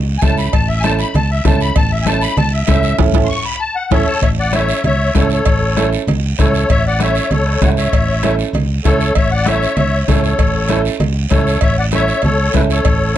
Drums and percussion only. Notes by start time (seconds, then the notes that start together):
0.22 bombo low, bombo rim, cowbell, high conga, low conga, short guiro
0.38 short guiro
0.53 bombo low, cowbell, high conga, long guiro
0.84 bombo rim, cowbell, high conga, short guiro
0.99 short guiro
1.14 cowbell, high conga, low conga, long guiro
1.45 bombo low, bombo rim, cowbell, high conga, low conga, low timbale, short guiro
1.61 short guiro
1.76 bombo low, cowbell, high conga, low conga, long guiro
2.06 bombo rim, cowbell, high conga, short guiro
2.21 short guiro
2.37 cowbell, high conga, low conga, long guiro
2.67 bombo low, bombo rim, cowbell, high conga, low timbale, short guiro
2.83 short guiro
2.98 bombo low, high conga, high timbale, long guiro
3.13 bombo low, high conga, high timbale, long guiro
3.91 bombo low, high conga, high timbale, long guiro
4.22 bombo low, cowbell, high conga, low conga, long guiro
4.53 bombo rim, cowbell, high conga, short guiro
4.69 short guiro
4.84 cowbell, high conga, low conga, long guiro
5.15 bombo low, bombo rim, cowbell, high conga, low timbale, short guiro
5.30 short guiro
5.45 bombo low, cowbell, high conga, long guiro
5.77 bombo rim, cowbell, high conga, short guiro
5.93 short guiro
6.08 cowbell, high conga, low conga, long guiro
6.38 bombo low, bombo rim, cowbell, high conga, short guiro
6.54 short guiro
6.69 bombo low, cowbell, high conga, long guiro
7.00 bombo rim, cowbell, high conga, short guiro
7.15 short guiro
7.31 cowbell, high conga, low conga, long guiro
7.46 bombo rim
7.62 bombo low, bombo rim, cowbell, high conga, low conga, low timbale, short guiro
7.77 short guiro
7.93 bombo low, cowbell, high conga, long guiro
8.23 bombo rim, cowbell, high conga, short guiro
8.39 short guiro
8.54 cowbell, high conga, low conga, long guiro
8.85 bombo low, bombo rim, cowbell, high conga, low timbale, short guiro
9.00 short guiro
9.15 bombo low, cowbell, high conga, long guiro
9.46 bombo rim, cowbell, high conga, short guiro
9.63 short guiro
9.77 cowbell, high conga, low conga, long guiro
10.08 bombo low, bombo rim, cowbell, high conga, low conga, low timbale, short guiro
10.24 short guiro
10.39 bombo low, cowbell, high conga, long guiro
10.69 bombo rim, cowbell, high conga, short guiro
10.85 short guiro
11.00 cowbell, high conga, low conga, long guiro
11.30 bombo low, bombo rim, cowbell, high conga, short guiro
11.47 short guiro
11.61 bombo low, cowbell, high conga, long guiro
11.92 bombo rim, cowbell, high conga, short guiro
12.08 short guiro
12.22 cowbell, high conga, low conga, long guiro
12.54 bombo low, bombo rim, cowbell, high conga, low timbale, short guiro
12.70 short guiro
12.85 bombo low, cowbell, high conga, long guiro